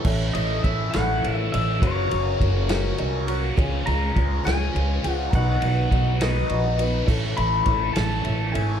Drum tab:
CC |x-----|------|------|------|
RD |-xxxxx|xxxxxx|xxxxxx|xxxxxx|
SD |---o--|---o--|---o--|---o--|
BD |o-o---|o-o---|o-o---|o-o---|

CC |x-----|
RD |-xxxxx|
SD |---o--|
BD |o-o---|